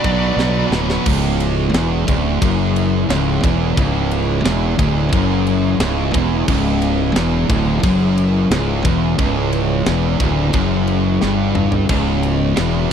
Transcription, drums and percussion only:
0.04 kick medium
0.04 crash medium
0.39 snare medium
0.72 snare medium
0.90 snare loud
1.06 kick loud
1.06 crash loud
1.40 ride medium
1.74 snare loud
1.74 ride loud
2.08 kick loud
2.08 ride medium
2.42 kick loud
2.42 ride loud
2.76 ride medium
3.10 snare loud
3.10 ride loud
3.44 kick loud
3.44 ride medium
3.77 kick loud
3.77 ride loud
4.11 ride medium
4.45 snare loud
4.45 ride loud
4.79 kick loud
4.79 ride medium
5.13 kick loud
5.13 ride loud
5.47 ride medium
5.80 snare loud
5.80 ride loud
6.14 kick loud
6.14 ride medium
6.48 kick loud
6.48 crash loud
6.82 ride medium
7.16 snare loud
7.16 ride loud
7.49 kick loud
7.49 ride medium
7.83 kick loud
7.83 ride loud
8.18 ride medium
8.51 snare loud
8.51 ride loud
8.85 kick loud
8.85 ride medium
9.18 kick loud
9.18 ride loud
9.53 ride medium
9.86 snare loud
9.86 ride loud
10.20 kick loud
10.20 ride medium
10.53 kick loud
10.53 ride loud
10.87 ride medium
11.22 snare medium
11.55 mid tom loud
11.72 floor tom medium
11.89 kick loud
11.89 crash loud
12.23 ride medium
12.57 snare loud
12.57 ride loud

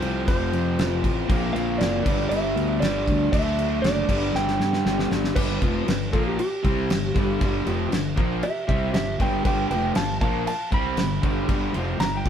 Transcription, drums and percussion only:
0.02 crash medium
0.28 kick loud
0.28 crash medium
0.53 crash medium
0.79 snare loud
0.79 crash medium
1.04 kick medium
1.04 crash medium
1.30 kick loud
1.30 crash medium
1.56 crash medium
1.81 snare loud
1.81 crash medium
2.06 kick loud
2.06 crash medium
2.31 crash medium
2.57 crash medium
2.82 snare loud
2.82 crash medium
3.08 kick medium
3.08 crash medium
3.33 kick loud
3.33 crash medium
3.59 crash medium
3.84 snare loud
3.84 crash medium
4.09 kick medium
4.09 crash loud
4.35 snare medium
4.48 snare medium
4.60 snare medium
4.73 snare medium
4.86 snare medium
4.99 snare medium
5.12 snare loud
5.24 snare medium
5.36 kick loud
5.36 crash loud
5.36 crash medium
5.62 kick loud
5.62 crash medium
5.88 snare loud
5.88 crash medium
6.13 kick loud
6.13 crash medium
6.39 crash medium
6.65 kick loud
6.65 crash medium
6.90 snare loud
6.90 crash medium
7.16 kick loud
7.16 crash medium
7.41 kick loud
7.41 crash medium
7.67 crash medium
7.92 snare loud
7.92 crash medium
8.17 kick loud
8.17 crash medium
8.43 crash medium
8.69 kick loud
8.69 crash medium
8.94 snare loud
8.94 crash medium
9.20 kick loud
9.20 crash medium
9.45 kick loud
9.45 crash medium
9.71 crash medium
9.95 snare loud
9.95 crash medium
10.21 kick loud
10.21 crash medium
10.47 crash medium
10.72 kick loud
10.72 crash medium
10.97 snare loud
10.97 crash medium
11.23 kick loud
11.23 crash medium
11.49 kick loud
11.49 crash medium
11.74 crash medium
12.00 snare loud
12.00 crash medium
12.25 kick loud
12.25 crash medium

